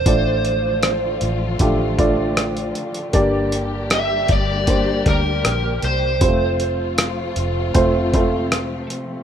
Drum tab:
HH |x-x-x-x-x-x-xxxx|x-x-x-x-x-x-x-x-|x-x-x-x-x-x-x-x-|
SD |----r-------r---|----r-------r---|----r-------r---|
BD |o-------o-o-----|o-----o-o-o-----|o-------o-o-----|